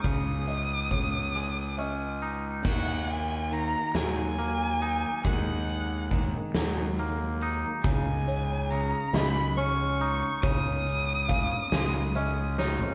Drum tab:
CC |------------|x-----------|------------|------------|
HH |x-x-x-x-x-x-|--x-x-x-x-x-|x-x-x-x-x-x-|x-x-x-x-x-x-|
SD |------------|------o-----|------o-----|------o-----|
FT |------------|------------|------------|------------|
BD |o---o-------|o-----------|o---o-------|o-----------|

CC |------------|
HH |x-x-x-x-x---|
SD |------o---o-|
FT |-----------o|
BD |o---o-------|